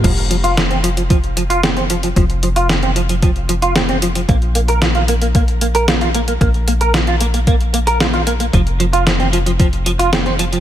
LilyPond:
<<
  \new Staff \with { instrumentName = "Clean electric guitar" } { \time 4/4 \key bes \lydian \tempo 4 = 113 f16 r16 f16 f'16 c'16 c'16 f16 f16 f16 r16 f16 f'16 c'16 c'16 f16 f16 | f16 r16 f16 f'16 c'16 c'16 f16 f16 f16 r16 f16 f'16 c'16 c'16 f16 f16 | bes16 r16 bes16 bes'16 f'16 f'16 bes16 bes16 bes16 r16 bes16 bes'16 f'16 f'16 bes16 bes16 | bes16 r16 bes16 bes'16 f'16 f'16 bes16 bes16 bes16 r16 bes16 bes'16 f'16 f'16 bes16 bes16 |
f16 r16 f16 f'16 c'16 c'16 f16 f16 f16 r16 f16 f'16 c'16 c'16 f16 f16 | }
  \new Staff \with { instrumentName = "Analog synth bass" } { \clef bass \time 4/4 \key bes \lydian f,,1 | f,,1 | bes,,1 | bes,,1 |
f,,1 | }
  \new DrumStaff \with { instrumentName = "Drums" } \drummode { \time 4/4 <cymc hh bd>16 hh16 hh16 hh16 <hh sn>16 hh16 hh16 hh16 <hh bd>16 hh16 hh16 hh16 <hh sn>16 hh16 hh16 hh16 | <hh bd>16 hh16 hh16 hh16 <hh sn>16 hh16 hh16 hh16 <hh bd>16 hh16 hh16 hh16 <hh sn>16 hh16 hh16 hh16 | <hh bd>16 hh16 hh16 hh16 <hh sn>16 hh16 hh16 hh16 <hh bd>16 hh16 hh16 hh16 <hh sn>16 hh16 hh16 hh16 | <hh bd>16 hh16 hh16 hh16 <hh sn>16 hh16 hh16 hh16 <hh bd>16 hh16 hh16 hh16 <hh sn>16 hh16 hh16 hh16 |
<hh bd>16 hh16 hh16 hh16 <hh sn>16 hh16 hh16 hh16 <hh bd>16 hh16 hh16 hh16 <hh sn>16 hh16 hh16 hh16 | }
>>